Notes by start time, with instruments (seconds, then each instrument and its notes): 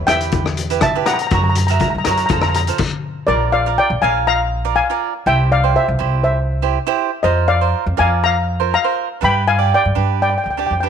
0.07 upright bass E2, cavaquinho E4 G4 B4, steel pan E5 G5, cross-stick, closed hi-hat
0.21 closed hi-hat
0.32 kick, closed hi-hat
0.46 cross-stick
0.57 closed hi-hat
0.70 cavaquinho E4 G4 B4, closed hi-hat
0.81 steel pan E5 A5, kick, cross-stick, closed hi-hat
0.95 cavaquinho E4 G4 B4
1.06 steel pan F#5 A#5, cross-stick, closed hi-hat
1.13 steel pan A#5
1.19 steel pan A#5, closed hi-hat
1.27 steel pan A#5, closed hi-hat
1.31 upright bass F#2, cavaquinho F#4 A#4 C#5, steel pan A#5, kick
1.44 steel pan A#5
1.50 steel pan A#5
1.55 steel pan A#5, closed hi-hat
1.67 cavaquinho F#4 A#4 E5, steel pan A#5, closed hi-hat
1.74 steel pan A#5
1.79 steel pan A#5, kick, closed hi-hat
1.90 steel pan A#5
1.95 upright bass F#2, steel pan A#5
2.04 upright bass F#2, cavaquinho F#4 A#4 C#5, steel pan A#5, cross-stick, closed hi-hat
2.11 steel pan A#5
2.17 steel pan A#5, closed hi-hat
2.26 upright bass F2, steel pan A#5, kick, closed hi-hat
2.31 cavaquinho F4 A4 C5, steel pan A#5
2.41 steel pan A#5, cross-stick
2.48 steel pan A#5
2.54 steel pan A#5, closed hi-hat
2.67 cavaquinho F4 A4 C5, closed hi-hat
2.78 kick, crash
3.27 upright bass A#1, cavaquinho F4 A#4 D5, steel pan A#4 D5
3.52 steel pan D5 F5
3.66 cavaquinho F4 A#4 D5
3.78 steel pan D5 G5
3.90 upright bass A#1
4.02 upright bass A#1, cavaquinho F4 A#4 F5, steel pan F5 G#5
4.27 steel pan F5 A#5
4.65 cavaquinho F4 A#4 D5
4.76 steel pan F5 G#5
4.90 cavaquinho F4 A#4 D5
5.26 upright bass C2, cavaquinho E4 G4 C5, steel pan E5 G5
5.52 steel pan D5 F5
5.64 cavaquinho E4 G4 C5
5.76 steel pan C5 E5
5.88 upright bass C2
5.99 upright bass C2, cavaquinho E4 G4 C5
6.23 steel pan C5 E5
6.62 cavaquinho E4 G4 C5
6.87 cavaquinho E4 G4 C5
7.23 upright bass F2, cavaquinho F4 A#4 C5, steel pan C5 D#5
7.48 steel pan D5 F5
7.61 cavaquinho F4 A#4 C5
7.86 upright bass F2
7.97 upright bass F2, cavaquinho F4 A#4 D5, steel pan F5 G#5
8.24 steel pan F5 A#5
8.60 cavaquinho F4 A#4 C5
8.74 steel pan F5 A#5
8.84 cavaquinho F4 A#4 C5
9.21 upright bass G2, cavaquinho D4 G4 B4, steel pan G5 B5
9.48 steel pan F5 G#5
9.59 cavaquinho D4 G4 D5
9.74 steel pan D5 G5
9.85 upright bass G2
9.95 upright bass G2, cavaquinho D4 G4 B4
10.22 steel pan D5 G5
10.30 steel pan G5
10.38 steel pan G5
10.44 upright bass D2, steel pan G5
10.50 steel pan G5
10.57 cavaquinho D4 G4 D5, steel pan G5
10.66 upright bass F2, steel pan G5
10.73 steel pan G5
10.80 cavaquinho D4 G4 B4, steel pan G5